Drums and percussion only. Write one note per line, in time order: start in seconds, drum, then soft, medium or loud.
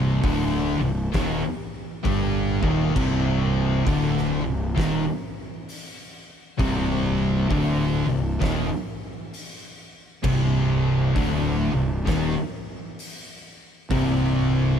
0.23 kick loud
0.23 open hi-hat medium
1.14 kick loud
1.14 snare loud
1.14 open hi-hat medium
2.05 kick loud
2.05 open hi-hat medium
2.63 kick loud
2.96 kick loud
2.96 crash loud
3.87 kick loud
3.87 open hi-hat medium
4.17 snare soft
4.78 kick loud
4.78 snare loud
4.78 open hi-hat medium
5.69 open hi-hat medium
6.59 kick loud
6.59 open hi-hat medium
7.51 kick loud
7.51 open hi-hat medium
8.42 kick loud
8.42 snare loud
8.42 open hi-hat medium
9.34 open hi-hat medium
10.24 kick loud
10.24 crash loud
11.16 kick loud
11.16 open hi-hat medium
12.07 kick loud
12.07 snare loud
12.07 open hi-hat medium
12.99 open hi-hat medium
13.91 kick loud
13.91 open hi-hat medium